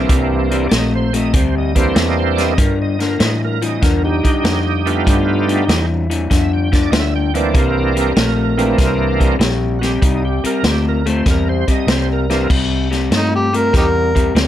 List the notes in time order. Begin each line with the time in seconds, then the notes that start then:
Already playing: E3 A#3 C4 D4
0.09 C2 C3 G3, kick, closed hi-hat
0.51 C3 G3, closed hi-hat
0.69 A#1 C3 A3 D5, snare, closed hi-hat
0.74 D#5
0.95 C5
1.13 C3 A3 D#5, closed hi-hat
1.33 D2 C3 G3 C5, kick, closed hi-hat
1.58 D#5
1.75 C3 E3 G3 A#3 C4 D4 C5, kick, closed hi-hat
1.95 E2 C3 G3 D#5, snare, closed hi-hat
2.19 C5
2.36 C3 G3 D5, snare, closed hi-hat
2.40 D#5
2.58 G2 D3 A#4, kick, closed hi-hat
2.82 D#5
2.99 G2 D3 A#4, snare, closed hi-hat
3.19 G2 A2 E3 D#5, snare, closed hi-hat
3.45 A#4
3.62 G2 E3 D#5, closed hi-hat
3.81 E2 G2 D3 A#4, kick, snare, closed hi-hat
4.04 D#4 G4
4.23 G2 D3, kick, closed hi-hat
4.44 F2 G2 D3, snare, closed hi-hat
4.86 G2 D3 G3 A3 B3 F4, closed hi-hat
5.06 G2 D3, kick, closed hi-hat
5.48 G2 D3, closed hi-hat
5.68 E2 G2 E3, snare, closed hi-hat
6.10 G2 E3, closed hi-hat
6.30 F2 G2 D3 E5, kick, snare, closed hi-hat
6.53 G5
6.72 G2 D3 D5, kick, snare, closed hi-hat
6.90 D2 G2 D3 D#5, snare, closed hi-hat
6.95 E5
7.16 G5
7.34 G2 D3 E3 A#3 C4 D4 D5, closed hi-hat
7.54 C2 C3 G3 A#4, kick, closed hi-hat
7.96 C3 G3, closed hi-hat
8.16 A#1 C3 A3, snare, closed hi-hat
8.57 C3 E3 A3 A#3 C4 D4, closed hi-hat
8.78 C2 C3 G3, kick, snare, closed hi-hat
9.19 C3 G3, kick, closed hi-hat
9.39 A#1 C3 G3, snare, closed hi-hat
9.79 C3 G3 F#4, closed hi-hat
9.83 G4, snare
10.02 C2 C3 G3 D#4, kick, closed hi-hat
10.25 G4
10.44 C3 G3 A#4, muted fingered electric bass stroke, closed hi-hat
10.63 D2 C3 A3, snare, closed hi-hat
10.68 G4
10.89 A#4
11.06 C3 A3 C5, closed hi-hat
11.26 E2 C3 G3, kick, snare, closed hi-hat
11.30 A#4
11.49 C5
11.68 C3 G3 D#5, muted fingered electric bass stroke, kick, closed hi-hat
11.87 C2 C3 G3 C5, snare, closed hi-hat
12.13 A#4
12.30 C3 E3 G3 A#3 C4 D4, snare, closed hi-hat
12.50 C2 C3 G3, kick, crash
12.91 C3 G3, snare, closed hi-hat
13.11 G2 C3 A3 D#4, snare, closed hi-hat
13.35 G4
13.53 C3 A3 A#4, closed hi-hat
13.73 E2 C3 G3, kick, snare, closed hi-hat
13.77 D#4 G4 A#4
14.15 C3 G3, kick, closed hi-hat
14.35 D2 C3 G3, snare, closed hi-hat